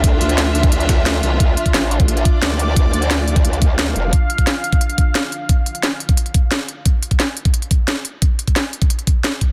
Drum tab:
HH |x-xxx-xxxxx-x-x-|x-xxx-xxxxx-x-x-|x-xxx-xxxxx-x-x-|x-xxx-xxxxx-x-x-|
SD |----o-----o-o---|----o-------o---|----o-------o---|----o-------o---|
BD |o------o--o-----|o--o---o--o-----|o------o--o-----|o--o---o--o-----|

HH |x-xxx-xxxxx-x-x-|x-xxx-xxxxx-x-x-|x-xxx-xxxxx-x-x-|
SD |----o-------o---|----o-------o---|----o-------o---|
BD |o------o--o-----|o--o---o--o-----|o--o---o--o---o-|